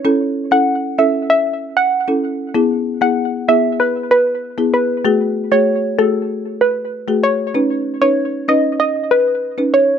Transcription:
<<
  \new Staff \with { instrumentName = "Synth pluck" } { \time 4/4 \key fis \dorian \tempo 4 = 96 r8. fis''16 r8 e''16 r16 e''16 r8 fis''16 r4 | r8. fis''16 r8 e''16 r16 b'16 r16 b'16 r8. b'16 r16 | r8. cis''16 r8 a'16 r8. b'16 r8. cis''16 r16 | r8. cis''16 r8 dis''16 r16 dis''16 r16 b'16 r8. cis''16 r16 | }
  \new Staff \with { instrumentName = "Marimba" } { \time 4/4 \key fis \dorian <cis' e' a'>16 r8 <cis' e' a'>16 r8 <cis' e' a'>16 r4. <cis' e' a'>16 r8 | <b e' gis'>16 r8 <b e' gis'>16 r8 <b e' gis'>16 r4. <b e' gis'>16 r8 | <a fis' gis'>16 r8 <a fis' gis'>16 r8 <a fis' gis'>16 r4. <a fis' gis'>16 r8 | <cis' dis' b'>16 r8 <cis' dis' b'>16 r8 <cis' dis' b'>16 r4. <cis' dis' b'>16 r8 | }
>>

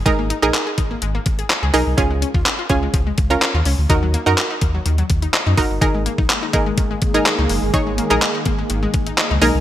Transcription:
<<
  \new Staff \with { instrumentName = "Synth pluck" } { \time 4/4 \key cis \mixolydian \tempo 4 = 125 <dis' gis' ais'>8. <dis' gis' ais'>4.~ <dis' gis' ais'>16 r4 <dis' gis' ais'>8 | <cis' eis' gis'>4~ <cis' eis' gis'>16 r16 <cis' eis' gis'>4 r16 <cis' eis' ais'>4 r16 | <dis' fis' ais'>8. <dis' fis' ais'>4.~ <dis' fis' ais'>16 r4 <dis' fis' ais'>8 | <dis' gis' ais'>4~ <dis' gis' ais'>16 r16 <dis' gis' ais'>4 r16 <dis' gis' ais'>4 r16 |
<dis' gis' cis''>8. <dis' gis' ais'>4.~ <dis' gis' ais'>16 r4 <dis' gis' ais'>8 | }
  \new Staff \with { instrumentName = "Synth arpeggio sound" } { \time 4/4 \key cis \mixolydian gis16 ais16 dis'16 gis'16 r16 gis'16 dis'16 ais16 gis16 ais16 r16 gis'16 gis''16 gis'16 dis'16 r16 | eis16 gis16 cis'16 eis'16 r16 eis'16 cis'16 gis16 eis16 gis16 r16 eis'16 eis''16 eis'16 cis'16 r16 | dis16 fis16 ais16 dis'16 r16 dis'16 ais16 fis16 dis16 fis16 r16 dis'16 dis''16 dis'16 ais16 r16 | dis16 gis16 ais16 dis'16 r16 dis'16 ais16 gis16 dis16 gis16 r16 dis'16 dis''16 dis'16 ais16 r16 |
dis16 gis16 ais16 dis'16 r16 dis'16 ais16 gis16 dis16 gis16 r16 dis'16 dis''16 dis'16 ais16 r16 | }
  \new Staff \with { instrumentName = "Analog synth pad" } { \time 4/4 \key cis \mixolydian r1 | r1 | r1 | <dis gis ais gis'>1~ |
<dis gis ais gis'>1 | }
  \new Staff \with { instrumentName = "Sub bass" } { \clef bass \time 4/4 \key cis \mixolydian gis,,8. ais,,16 r8 gis,,8 gis,,8 gis,,8 r16 cis,16 b,,16 bis,,16 | cis,8. dis,16 r8 cis,8 cis,8 cis,8 r16 dis,16 cis,16 d,16 | dis,8. fis,16 r8 dis,8 dis,8 dis,8 r16 fis,16 fis,,16 g,,16 | gis,,8. ais,,16 r8 gis,,8 gis,,8 gis,,8 r16 cis,16 fis,,16 g,,16 |
gis,,8. ais,,16 r8 gis,,8 gis,,8 gis,,8 r16 cis,16 b,,16 bis,,16 | }
  \new DrumStaff \with { instrumentName = "Drums" } \drummode { \time 4/4 <hh bd>8 hh8 <hc hh>8 <hh bd>8 hh8 <hh bd>16 hh16 <hc hh>8 hho8 | <hh bd>8 hh16 bd16 <hc hh>8 <hh bd>8 <hh bd>8 <hh bd>16 hh16 <hc hh>8 hho8 | <hh bd>8 hh8 <hc hh>8 <hh bd>8 hh16 hh16 <hh bd>16 hh16 <hc hh>8 <hho bd>8 | <hh bd>8 hh16 bd16 <hc hh>8 <hh bd>8 <hh bd>8 <hh bd>16 hh16 <hc hh>8 hho8 |
<hh bd>8 hh8 <hc hh>8 <hh bd>8 hh8 <hh bd>16 hh16 <hc hh>8 hho8 | }
>>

